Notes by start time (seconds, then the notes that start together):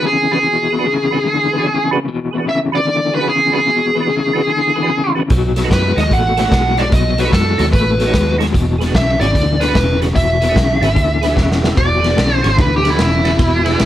0.06 E2 C#3 G#4
0.31 E2 C#3 E3 D4 F#4 G#4 B4
0.47 E2 B2
0.70 E2 B2 G#4 B4
0.79 E3 D4 F#4 G#4 B4
0.86 E2 C#3
1.11 E2 C#3 E3 D4 F#4 G#4 B4
1.26 E2 D3
1.51 E2 D3 G#4 B4
1.58 E3 D4 F#4 G#4 C#5
1.67 E2 C#3
1.91 E2 C#3 E3 D4 F#4 G#4 B4
2.08 E2 B2
2.31 E2 B2 G#4 B4
2.38 E3 D4 F#4 G#4 B4
2.47 E2 C#3 E5
2.72 E2 C#3 E3 D4 F#4 G#4 B4 D5
2.87 E2 D3
3.12 E2 D3 G#4 B4
3.19 E3 D4 F#4 G#4 B4
3.28 E2 C#3 G#4
3.52 E2 E3 D4 F#4 G#4 B4
3.56 C#3
3.68 E2 B2
3.93 E2 B2 G#4 B4
4.00 E3 D4 F#4 G#4 B4
4.10 E2 C#3
4.33 E2 C#3 E3 D4 F#4 G#4 B4
4.49 E2 D3
4.74 E2 D3 G#4 B4
4.82 E3 D4 F#4 G#4 B4
4.89 E2 C#3
5.15 E2 C#3 E3 D4 F#4 G#4 B4
5.30 B1 B2 F#3, kick, closed hi-hat
5.56 B2 F#3 A4 C#5, snare, closed hi-hat
5.64 D#4 F#4 A4 B4
5.70 F#2 B2 G#3 B4, kick, snare, closed hi-hat
5.96 D#2 B2 G#3 D#4 F#4 A4 D#5, snare, closed hi-hat
6.11 A1 B2 A3 F#5, kick, closed hi-hat
6.37 B2 A3 A4 C#5 F#5, snare, closed hi-hat
6.45 D#4 F#4 A4 C#5
6.52 B1 B2 G#3, kick, snare, closed hi-hat
6.77 B2 G#3 D#4 F#4 A4 C#5 D5, snare, closed hi-hat
6.92 B1 B2 F#3 D#5, kick, closed hi-hat
7.17 B2 F#3 A4 B4 C#5, snare, closed hi-hat
7.25 D#4 F#4 A4 C#5
7.32 F#2 B2 G#3 A4, kick, snare, closed hi-hat
7.58 D#2 B2 G#3 D#4 F#4 A4 C#5, snare, closed hi-hat
7.72 A1 B2 A3 B4, kick, closed hi-hat
7.97 B2 A3 A4 C#5, snare, closed hi-hat
8.07 D#4 F#4 A4 C#5
8.13 D#2 B2 G#3, kick, snare, closed hi-hat
8.38 B2 G#3 D#4 F#4 A4 C#5, snare, closed hi-hat
8.53 E1 E2 B2, kick, closed hi-hat
8.78 E2 B2 G#4 B4, snare, closed hi-hat
8.86 D4 F#4 G#4 B4
8.94 B1 E2 C#3 E5, kick, snare, closed hi-hat
9.20 G#1 E2 C#3 D4 F#4 G#4 C#5 D5, snare, closed hi-hat
9.35 D2 E2 D3, kick, closed hi-hat
9.59 E2 D3 G#4 B4, snare, closed hi-hat
9.68 D4 F#4 G#4 B4
9.74 E1 E2 C#3, kick, snare, closed hi-hat
10.00 E2 C#3 D4 F#4 G#4 B4, snare, closed hi-hat
10.15 E1 E2 B2 E5, kick, closed hi-hat
10.40 E2 B2 G#4 B4, snare, closed hi-hat
10.49 D4 F#4 G#4 B4
10.55 B1 E2 C#3, kick, snare, closed hi-hat
10.81 G#1 E2 C#3 D4 F#4 G#4 B4, snare, closed hi-hat
10.95 D2 E2 D3, kick, closed hi-hat
11.21 E2 D3 G#4 B4 B5, snare, closed hi-hat
11.28 D4 F#4 G#4 B4 G#5
11.35 E1 E2 C#3 F#5, kick, snare
11.52 snare
11.60 E2 C#3 D4 F#4 G#4 B4 E5
11.64 snare
11.76 E1 E2 B2 D5, kick, snare, ride
12.00 E2 B2 G#4 B4
12.04 snare, ride
12.10 D4 F#4 G#4 B4
12.17 B1 E2 C#3, snare, ride
12.37 C5
12.41 G#1 E2 C#3 D4 F#4 G#4 C#5, snare, ride
12.57 D2 E2 D3 B4, kick, snare, ride
12.76 G4
12.82 E2 D3 G#4 B4, snare, ride
12.90 D4 E4 F#4 G#4 B4
12.98 E1 E2 C#3, snare, ride
13.03 E4
13.24 E2 C#3 D4 F#4 G#4 B4, snare, ride
13.38 E1 E2 B2, kick, snare, ride
13.63 E2 B2 G#4 B4, snare, ride
13.70 D4 F#4 G#4 B4
13.79 B1 E2 C#3, snare, ride